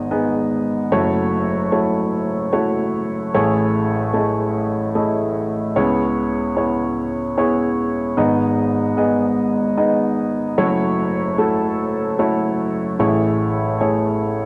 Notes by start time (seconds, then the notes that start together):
Already playing: G#1 G#2 B3 D#4 G#4 D#5
0.11 B3 D#4 G#4 D#5
0.92 F#1 F#2 A3 E4 F#4 C#5
1.72 A3 E4 F#4 C#5
2.53 A3 E4 F#4 C#5
3.34 A1 A2 A3 E4 G#4 C#5
4.14 A3 E4 G#4 D#5
4.95 A3 E4 G#4 D#5
5.76 C#2 C#3 B3 E4 G#4 C#5
6.57 B3 E4 G#4 C#5
7.38 B3 E4 G#4 C#5
8.17 G#1 G#2 B3 D#4 G#4 D#5
8.97 B3 D#4 G#4 D#5
9.77 B3 D#4 G#4 D#5
10.58 F#1 F#2 A3 E4 F#4 C#5
11.38 A3 E4 F#4 A4
12.19 A3 E4 F#4 C#5
12.99 A1 A2 A3 E4 G#4 C#5
13.81 A3 E4 G#4 C#5